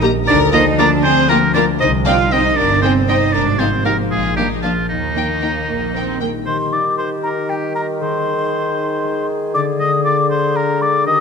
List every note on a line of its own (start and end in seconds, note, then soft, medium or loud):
0.00 0.15 A#1 medium
0.00 0.30 D#3 medium
0.00 0.30 G3 medium
0.00 0.10 A#3 medium
0.00 0.30 D#4 medium
0.00 0.10 G4 medium
0.00 1.83 A#4 medium
0.00 0.10 A#5 medium
0.27 0.91 D2 medium
0.27 1.83 D3 medium
0.27 0.37 D4 loud
0.27 0.52 A#4 loud
0.27 0.39 D5 loud
0.53 1.03 F3 medium
0.53 0.61 A#3 medium
0.53 0.79 D#4 medium
0.53 0.61 F4 medium
0.53 0.62 C5 loud
0.53 0.64 D#5 loud
0.53 0.61 A#5 medium
0.78 0.86 A#3 medium
0.78 1.04 D4 medium
0.78 0.87 F4 medium
0.78 0.87 A#4 medium
0.78 0.90 D5 loud
0.78 0.86 A#5 medium
1.03 1.68 D2 medium
1.03 1.54 F3 medium
1.03 1.30 C4 loud
1.03 1.29 G#4 medium
1.03 1.30 C5 loud
1.29 1.38 A#3 medium
1.29 1.83 D4 medium
1.29 1.38 F4 medium
1.29 1.38 G4 medium
1.29 1.53 A#4 loud
1.29 1.37 A#5 medium
1.54 1.83 F3 medium
1.54 1.64 A#3 medium
1.54 1.63 D4 medium
1.54 1.64 F4 medium
1.54 1.63 A#4 medium
1.54 1.66 D5 loud
1.54 1.63 A#5 medium
1.80 2.45 C2 medium
1.80 3.36 C3 medium
1.80 1.89 D#4 medium
1.80 1.89 C5 medium
1.80 1.92 D#5 loud
2.06 2.56 G3 medium
2.06 2.15 C4 medium
2.06 2.15 D#4 medium
2.06 2.32 F4 medium
2.06 2.14 D5 loud
2.06 2.34 F5 loud
2.06 2.15 G5 medium
2.31 2.41 C4 medium
2.31 3.84 D#4 medium
2.31 2.57 D#4 medium
2.31 2.41 D#4 medium
2.31 2.57 C5 medium
2.31 2.58 D#5 loud
2.31 2.40 G5 medium
2.57 3.21 G1 medium
2.57 3.07 G3 medium
2.57 2.83 D4 medium
2.57 2.83 A#4 medium
2.57 2.81 D5 loud
2.82 4.13 C4 medium
2.82 3.08 C4 medium
2.82 2.92 C4 medium
2.82 2.92 D#4 medium
2.82 2.91 G#4 medium
2.82 2.94 C5 medium
2.82 2.91 G5 medium
3.08 3.36 G3 medium
3.08 3.17 C4 medium
3.08 3.34 D#4 medium
3.08 3.17 D#4 medium
3.08 3.33 C5 medium
3.08 3.34 D#5 loud
3.08 3.16 G5 medium
3.33 3.99 G#1 medium
3.33 4.13 G#2 medium
3.33 3.60 D4 medium
3.33 3.42 A#4 medium
3.33 3.60 D5 loud
3.59 4.35 F3 medium
3.59 3.86 C4 medium
3.59 3.69 C4 medium
3.59 3.68 D#4 medium
3.59 3.67 G#4 medium
3.59 3.84 C5 medium
3.59 3.67 F5 medium
3.84 4.11 A#3 medium
3.84 3.94 C4 medium
3.84 4.13 D#4 soft
3.84 3.94 D#4 medium
3.84 3.93 G4 medium
3.84 3.97 A#4 medium
3.84 4.13 C5 medium
3.84 3.92 F5 medium
4.11 4.77 A#1 medium
4.11 4.92 A#2 medium
4.11 4.20 G#3 medium
4.11 4.37 F4 medium
4.11 4.36 G#4 medium
4.36 4.92 F3 soft
4.36 4.45 G3 medium
4.36 4.46 A#3 medium
4.36 4.45 D4 medium
4.36 4.63 D#4 medium
4.36 4.48 G4 medium
4.36 4.45 F5 medium
4.63 4.72 F3 medium
4.63 4.72 A#3 medium
4.63 4.92 D4 soft
4.63 4.71 D4 medium
4.63 4.72 D4 medium
4.63 4.88 F4 medium
4.63 4.71 F5 medium
4.89 5.56 D#2 medium
4.89 6.45 D#3 medium
4.89 6.18 D#3 medium
4.89 6.18 A#3 medium
4.89 6.18 D#4 medium
5.16 5.24 A#3 soft
5.16 5.24 D#4 medium
5.16 5.67 D#4 soft
5.16 5.25 G5 soft
5.42 5.51 A#3 soft
5.42 5.51 D#4 soft
5.42 6.97 A#4 soft
5.42 5.50 G5 soft
5.68 6.34 A#1 medium
5.68 5.93 A#3 medium
5.68 6.19 D#4 soft
5.94 7.48 G3 soft
5.94 6.21 C4 medium
5.94 6.03 G5 soft
6.21 6.29 A#3 medium
6.21 6.71 D#4 soft
6.21 6.29 G5 soft
6.46 9.56 D#3 medium
6.46 8.00 D#3 soft
6.46 7.97 G4 medium
6.46 6.58 C5 medium
6.46 6.74 C6 medium
6.72 7.23 D#4 soft
6.72 6.84 D5 soft
6.72 6.97 D6 medium
6.98 8.03 A#4 soft
6.98 7.09 C5 medium
6.98 7.04 C6 medium
7.23 7.74 D#4 soft
7.23 7.51 A#4 medium
7.23 7.29 A#5 medium
7.49 8.03 G3 soft
7.49 7.75 G4 medium
7.49 7.55 G5 medium
7.75 8.26 D#4 soft
7.75 7.87 A#4 medium
7.75 7.81 A#5 medium
8.01 9.57 D#3 medium
8.01 11.09 G#4 medium
8.01 9.27 C5 medium
8.01 9.27 C6 medium
8.27 8.77 D#4 soft
8.53 11.09 G#4 soft
8.78 9.28 D#4 soft
9.04 9.79 G#3 soft
9.30 9.57 D#4 soft
9.54 11.06 D3 medium
9.54 11.09 D3 medium
9.54 9.66 D5 medium
9.54 9.60 D6 medium
9.79 10.29 G#3 soft
9.79 9.91 D#5 medium
9.79 10.04 D#6 medium
10.04 11.09 F4 soft
10.04 10.16 D5 medium
10.04 10.30 D6 medium
10.30 10.80 G#3 soft
10.30 10.58 C5 medium
10.30 10.58 C6 medium
10.55 11.09 D4 soft
10.55 10.81 A#4 medium
10.55 10.83 A#5 medium
10.81 11.09 G#3 soft
10.81 11.06 D5 medium
10.81 11.06 D6 medium
11.06 11.20 D#3 medium
11.06 11.20 G4 medium
11.06 11.20 D#5 medium
11.06 11.20 D#6 medium